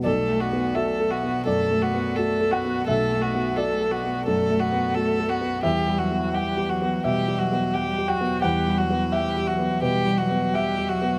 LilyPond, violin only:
\new Staff \with { instrumentName = "Violin" } { \time 4/4 \key b \minor \tempo 4 = 86 a'8 fis'8 a'8 fis'8 a'8 fis'8 a'8 fis'8 | a'8 fis'8 a'8 fis'8 a'8 fis'8 a'8 fis'8 | g'8 fis'8 g'8 fis'8 g'8 fis'8 g'8 fis'8 | g'8 fis'8 g'8 fis'8 g'8 fis'8 g'8 fis'8 | }